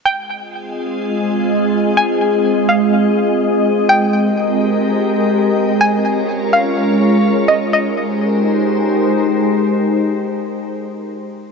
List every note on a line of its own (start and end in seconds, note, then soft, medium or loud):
0.05 3.86 G#3 medium
0.05 5.77 C4 medium
0.05 3.86 F4 medium
0.05 3.86 G#4 medium
0.05 5.77 D#5 medium
0.05 1.93 G5 loud
1.97 2.65 G#5 loud
2.69 3.37 F5 medium
3.89 5.79 G#3 medium
3.89 5.79 G4 medium
3.89 5.79 A#4 medium
3.89 5.77 G5 loud
5.81 7.71 G#3 medium
5.81 7.71 C#4 medium
5.81 7.71 F4 medium
5.81 7.71 A#4 medium
5.81 7.71 C#5 medium
5.81 6.49 G#5 loud
6.53 7.45 F5 medium
7.48 7.72 D#5 medium
7.73 10.72 G#3 medium
7.73 10.72 D#4 medium
7.73 10.72 G4 medium
7.73 10.72 A#4 medium
7.73 10.72 C5 medium
7.73 9.13 D#5 medium